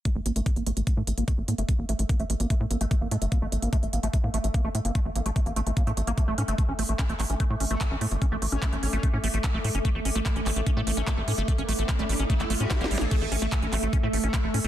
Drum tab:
CC |------------------------------------------------|------------------------------------------------|------------------------------------------------|------------------------------------------------|
HH |x-----x--x--x--x--x--x--x-----x--x--x-----x--x--|x-----x--x--x--x--x--x--x-----x--x--x-----x--x--|x-----x--x--x--x--x--x--x-----x--x--x-----x--x--|x-----x--x--x--x--x--x--x--x--x--x--x-----x--x--|
CP |------------------------------------------------|------------------------------------------------|------------------------------------------------|------------------------------------------------|
SD |------------------------------------------------|------------------------------------------------|------------------------------------------------|------------------------------------------------|
BD |o-----------o-----------o-----------o-----------|o-----------o-----------o-----------o-----------|o-----------o-----------o-----------o-----------|o-----------o-----------o-----------o-----------|

CC |------------------------------------------------|------------------------------------------------|------------------------------------------------|------------------------------------------------|
HH |x-----o--x--x--x--o--x--x-----o--x--x-----o--x--|x-----o--x--x--x--o--x--x-----o--x--x-----o--x--|x-----o--x--x--x--o--x--x-----o--x--x-----o--x--|x--x--o--x--x--x--o--x--x--x--o--x--x--x--o--x--|
CP |------------x-----x-----------------x-----------|------------x-----------------------x-----------|------------x-----x-----------------x-----------|------------x--------------x--------x-----------|
SD |------------------------------------------------|------------------------------------------------|------------------------------------------------|------------------------------------o---o---o---|
BD |o-----------o-----------o-----------o-----------|o-----------o-----------o-----------o-----------|o-----------o-----------o-----------o-----------|o-----------o-----------o-----------o-----------|

CC |x-----------------------------------------------|
HH |x-----o--x--x--x--o--x--x-----o--x--x-----o--x--|
CP |------------x-----x-----------------x-----------|
SD |------------------------------------------------|
BD |o-----------o-----------o-----------o-----------|